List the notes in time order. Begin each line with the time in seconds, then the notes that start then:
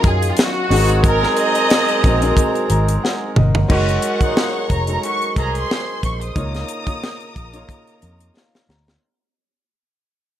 Already playing: C#3 D#3 F#3 A#3 C#4 D#4 F4 A#4 D#5 F5 D#6
0.04 F#2 G#4, kick, closed hi-hat
0.22 closed hi-hat
0.32 F4
0.37 F#4, snare, closed hi-hat
0.70 G#1 D#3 G#3 C4 D#4 F#4 G#4 A#4 A#5, open hi-hat
0.78 A#4
0.89 closed hi-hat
1.04 A#4, kick, closed hi-hat
1.23 snare
1.37 D#5, closed hi-hat
1.55 closed hi-hat
1.70 snare, closed hi-hat
1.88 closed hi-hat
2.03 A#1 G#3 C4 D#4 F#4 A#4, kick, closed hi-hat
2.21 G#3 C4 D#4 F#4 A#4, closed hi-hat
2.37 kick, closed hi-hat
2.55 closed hi-hat
2.70 G#1 A#5, closed hi-hat
2.88 closed hi-hat
3.03 F#5, snare
3.36 G1 D#5, mid tom
3.55 floor tom
3.68 F#1 D#3 F#3 G#3 C#4 D#4 F#4 G#4 A#4 C#5 C#6, kick, crash
3.89 closed hi-hat
4.02 F#5, closed hi-hat
4.20 A#2 G#3 D#4 F#4 G#4, kick, closed hi-hat
4.28 A#4
4.37 snare
4.70 F1 A#5, kick, closed hi-hat
4.87 G#3 D#4 F#4 A4 A#5, closed hi-hat
4.95 A#4
5.03 D#3 C#4 F#4 C#6, closed hi-hat
5.22 closed hi-hat
5.36 C2 D#3 C#4 G#4 C5 A#5 C6, kick, closed hi-hat
5.55 C6, closed hi-hat
5.71 snare
6.03 A#1 C#6, kick, closed hi-hat
6.21 D#6, closed hi-hat
6.35 C#2 C#3 A#3 D#4 F4 A#4 C#5 A#5, kick, closed hi-hat
6.55 snare, closed hi-hat
6.68 closed hi-hat
6.86 A#3 D#4 F4 C#5, kick, closed hi-hat
7.04 snare
7.20 closed hi-hat
7.36 A#1, kick, closed hi-hat
7.53 A#3 D#4 F4 C#5, closed hi-hat
7.69 kick, closed hi-hat
7.87 closed hi-hat
8.02 F2, closed hi-hat
8.20 closed hi-hat
8.36 F5, snare
8.55 snare
8.69 D2 A#5, snare
8.88 snare